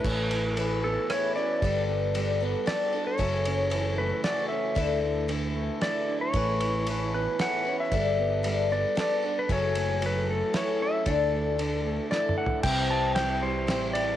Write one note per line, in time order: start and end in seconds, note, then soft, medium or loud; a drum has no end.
0.00 0.59 B4 medium
0.04 0.96 A1 medium
0.04 1.36 A2 medium
0.04 0.56 A3 medium
0.04 0.57 C#4 medium
0.04 0.58 E4 medium
0.04 0.59 B4 medium
0.04 kick loud
0.04 crash medium
0.31 0.56 E3 medium
0.31 ride medium
0.56 1.62 E3 medium
0.56 1.10 A3 medium
0.56 1.10 C#4 medium
0.56 1.11 E4 medium
0.56 0.84 A4 medium
0.56 1.11 B4 medium
0.56 ride medium
0.84 1.63 B3 medium
0.84 1.11 A4 medium
1.10 1.36 A3 medium
1.10 1.37 C#4 medium
1.10 1.63 E4 medium
1.10 1.36 E4 medium
1.10 1.35 B4 medium
1.10 1.35 C#5 medium
1.10 cross-stick medium
1.10 ride medium
1.36 1.62 C#4 medium
1.36 1.63 C#4 soft
1.36 1.63 E4 soft
1.36 1.62 B4 soft
1.36 1.85 D5 medium
1.62 2.54 G1 medium
1.62 2.13 G3 medium
1.62 2.15 G3 medium
1.62 2.14 B3 medium
1.62 2.15 D4 medium
1.62 2.17 A4 medium
1.62 kick medium
1.62 ride medium
1.89 2.41 B3 medium
2.14 2.41 G3 medium
2.14 3.20 G3 medium
2.14 2.41 B3 medium
2.14 2.41 D4 medium
2.14 2.39 A4 medium
2.14 ride medium
2.41 3.20 B3 medium
2.41 2.66 B3 soft
2.41 2.67 D4 soft
2.41 2.67 A4 medium
2.66 2.93 G3 medium
2.66 2.94 B3 medium
2.66 2.93 D4 medium
2.66 4.24 A4 medium
2.66 2.91 A4 medium
2.66 3.06 D5 medium
2.66 snare medium
2.66 ride medium
2.92 3.19 B3 soft
2.92 3.20 D4 medium
2.92 3.19 D4 soft
2.92 3.19 A4 soft
3.07 4.01 C#5 medium
3.18 4.11 F#1 medium
3.18 3.71 F#2 medium
3.18 4.52 F#2 medium
3.18 3.72 C#3 medium
3.18 3.69 E3 medium
3.18 3.70 A3 medium
3.18 3.70 C#4 medium
3.18 3.73 A4 medium
3.18 kick medium
3.18 ride medium
3.45 4.78 C#3 medium
3.45 ride medium
3.70 4.23 E3 medium
3.70 4.77 E3 medium
3.70 4.24 A3 medium
3.70 4.24 C#4 medium
3.70 4.27 A4 medium
3.70 ride medium
3.98 5.03 A3 medium
3.98 4.25 B4 medium
4.24 4.75 E3 medium
4.24 4.76 A3 medium
4.24 4.77 C#4 medium
4.24 4.77 F#4 medium
4.24 4.77 A4 medium
4.24 4.48 D5 medium
4.24 snare medium
4.24 ride medium
4.49 4.77 C#4 medium
4.49 4.99 E5 medium
4.75 5.69 D2 medium
4.75 5.29 D3 medium
4.75 5.28 D3 medium
4.75 5.28 E3 medium
4.75 5.29 A3 medium
4.75 5.30 E4 medium
4.75 5.31 A4 medium
4.75 kick loud
4.75 ride medium
5.03 5.56 A3 medium
5.28 6.35 D3 medium
5.28 5.80 E3 medium
5.28 5.83 A3 medium
5.28 5.82 E4 medium
5.28 5.84 A4 medium
5.28 ride soft
5.56 7.14 A3 medium
5.81 6.33 E3 medium
5.81 6.34 A3 soft
5.81 6.35 E4 medium
5.81 6.34 E4 medium
5.81 6.36 A4 medium
5.81 6.21 D5 medium
5.81 snare medium
5.81 ride soft
6.09 6.35 D4 medium
6.21 7.16 C#5 medium
6.34 7.26 A1 medium
6.34 7.67 A2 medium
6.34 6.86 A3 medium
6.34 6.87 C#4 medium
6.34 6.88 E4 medium
6.34 6.90 B4 medium
6.34 kick loud
6.34 ride soft
6.61 6.87 E3 medium
6.61 ride medium
6.87 7.93 E3 medium
6.87 7.39 A3 medium
6.87 7.38 C#4 medium
6.87 7.40 E4 medium
6.87 7.41 B4 medium
6.87 ride medium
7.14 7.93 B3 medium
7.14 7.41 B4 medium
7.39 7.66 A3 medium
7.39 7.66 C#4 medium
7.39 7.93 E4 medium
7.39 7.65 E4 medium
7.39 7.63 B4 medium
7.39 7.80 F#5 medium
7.39 snare medium
7.39 ride medium
7.65 7.93 C#4 medium
7.65 7.92 C#4 soft
7.65 7.92 E4 soft
7.65 7.92 B4 soft
7.80 8.72 E5 medium
7.92 8.84 G1 medium
7.92 8.42 G3 medium
7.92 8.44 G3 medium
7.92 8.43 B3 medium
7.92 8.44 D4 medium
7.92 8.46 A4 medium
7.92 kick loud
7.92 ride medium
8.19 8.71 B3 medium
8.43 8.70 G3 medium
8.43 9.49 G3 medium
8.43 8.71 B3 medium
8.43 8.71 D4 medium
8.43 8.69 A4 medium
8.43 ride medium
8.70 9.50 B3 medium
8.70 8.96 B3 soft
8.70 8.97 D4 soft
8.70 8.97 A4 soft
8.70 8.99 D5 medium
8.95 9.23 G3 medium
8.95 9.24 B3 medium
8.95 9.23 D4 medium
8.95 10.54 A4 medium
8.95 9.21 A4 medium
8.95 snare medium
8.95 ride medium
9.00 9.39 D5 medium
9.22 9.50 B3 soft
9.22 9.50 D4 medium
9.22 9.50 D4 soft
9.22 9.49 A4 soft
9.39 9.51 B4 medium
9.49 10.41 F#1 medium
9.49 10.02 F#2 medium
9.49 10.02 C#3 medium
9.49 10.00 E3 medium
9.49 10.01 F#3 medium
9.49 10.02 A3 medium
9.49 10.02 C#4 medium
9.49 10.03 A4 medium
9.49 10.05 C#5 medium
9.49 kick loud
9.49 ride medium
9.75 10.27 A3 medium
9.75 ride medium
10.01 10.53 E3 soft
10.01 11.07 F#3 medium
10.01 10.53 A3 medium
10.01 10.54 C#4 medium
10.01 10.56 A4 medium
10.01 ride medium
10.06 10.31 B4 medium
10.29 11.07 A3 medium
10.29 10.56 A4 medium
10.53 11.06 E3 medium
10.53 11.06 A3 medium
10.53 11.07 C#4 medium
10.53 11.11 E4 medium
10.53 11.07 A4 medium
10.53 10.83 C#5 medium
10.53 snare medium
10.53 ride soft
10.82 11.08 C#4 medium
10.82 11.09 E5 medium
11.06 11.98 D2 medium
11.06 11.59 D3 medium
11.06 11.57 E3 medium
11.06 11.58 A3 medium
11.06 11.59 D4 medium
11.06 12.08 A4 medium
11.06 11.60 A4 medium
11.06 kick loud
11.06 ride medium
11.34 11.85 A3 medium
11.58 12.64 D3 medium
11.58 12.10 E3 medium
11.58 12.11 A3 soft
11.58 12.12 D4 medium
11.58 12.13 A4 medium
11.58 ride soft
11.86 12.65 A3 medium
12.11 12.63 E3 medium
12.11 12.64 A3 medium
12.11 12.65 D4 medium
12.11 12.64 E4 medium
12.11 12.65 A4 medium
12.11 12.36 D5 medium
12.11 snare soft
12.29 mid tom medium
12.38 12.65 D4 medium
12.38 12.63 F#5 medium
12.46 floor tom medium
12.63 13.69 C2 medium
12.63 13.16 C3 medium
12.63 13.95 C3 medium
12.63 13.15 E3 medium
12.63 13.15 C4 medium
12.63 13.17 E4 medium
12.63 13.18 G4 medium
12.63 12.90 G5 medium
12.63 kick loud
12.63 crash loud
12.90 13.42 G3 medium
12.90 13.15 A5 medium
13.15 13.67 E3 medium
13.15 13.67 C4 medium
13.15 13.95 E4 medium
13.15 13.69 E4 medium
13.15 13.69 G4 medium
13.15 13.43 G5 medium
13.15 snare medium
13.15 ride medium
13.43 14.16 G3 medium
13.43 13.93 C5 medium
13.67 14.14 A1 loud
13.67 14.16 E3 medium
13.67 14.16 C4 medium
13.67 14.16 E4 medium
13.67 14.16 G4 medium
13.67 snare medium
13.67 ride medium
13.93 14.16 E4 medium
13.93 14.16 D5 medium
13.93 ride medium